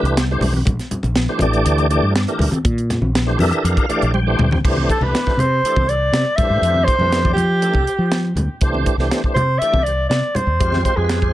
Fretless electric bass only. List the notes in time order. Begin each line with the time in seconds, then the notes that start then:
0.03 C2
0.40 B1
0.67 A#1
0.91 muted fretless electric bass stroke
1.04 A#1
1.40 A1
1.66 D2
2.02 G2
2.39 D2
2.65 A#2
3.01 A#1
3.39 F2
3.64 F2
3.90 muted fretless electric bass stroke
4.02 A#1
4.39 D2
4.64 C2
5.00 C2
5.27 muted fretless electric bass stroke
5.37 C3
5.63 muted fretless electric bass stroke
5.76 C2
6.12 C3
6.39 muted fretless electric bass stroke
6.50 A2
6.62 F2
6.98 F2
7.36 F3
7.75 C2
7.98 F3
8.35 D2
8.61 C2
8.97 C2
9.23 muted fretless electric bass stroke
9.35 C3
9.61 muted fretless electric bass stroke
9.73 C2
10.10 C3
10.35 muted fretless electric bass stroke
10.47 E2
10.60 F2
10.97 F2